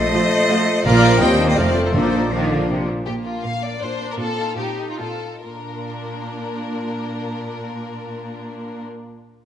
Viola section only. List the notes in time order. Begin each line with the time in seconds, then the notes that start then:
0.14 F3 A3
0.50 F3 A3
0.86 F3 A#3
1.21 G3 C4
1.40 A#3
1.58 F3 A3
1.94 F3 A#3
2.32 F3 A#3
3.07 A#3
3.81 D4
4.20 F4
4.59 D#4
5.00 F4
5.44 A#3 D4